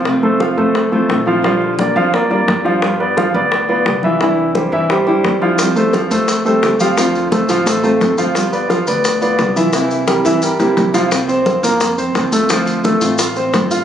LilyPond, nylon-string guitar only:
\new Staff \with { instrumentName = "Nylon-string guitar" } { \time 4/4 \key f \major \tempo 4 = 174 <c a c' f'>2 r8 <e a c' f'>8 <e a c' f'>8 <e a c' f'>8 | <d g d' f'>2 r8 <g d' f'>8 <d g d' f'>8 <g d' f'>8 | <g b f'>2 r8 <b f'>8 <g b f'>8 <b f'>8 | <c e g d' e'>2 r8 <e g d' e'>8 <e g d' e'>8 <e g d' e'>8 |
<f g c' g'>2 r8 <g c' g'>8 <f g c' g'>8 <g c' g'>8 | <d a c' f'>2 r8 <a c' f'>8 <d a c' f'>8 <a c' f'>8 | <g b f'>2 r8 <b f'>8 <g b f'>8 <b f'>8 | <c e bes c' e'>2 r8 <e bes c' e'>8 <e bes c' e'>8 <e bes c' e'>8 |
<c f bes c' f'>4. <f bes c' f'>8 r4 <f bes c' f'>4 | <d a c' f'>4. <a c' f'>8 r4 <d a c' f'>4 | }